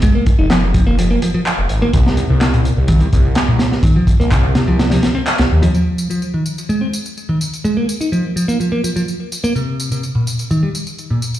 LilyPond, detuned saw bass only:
\new Staff \with { instrumentName = "Detuned saw bass" } { \clef bass \time 4/4 \key f \minor \tempo 4 = 126 r8. f,,4 f,,8. r8. f,,16 aes,,16 r16 | c,8. c,4 c,8. c,4. | r8. c,4 c,8. r8. c,16 ees,16 r16 | r1 |
r1 | r1 | }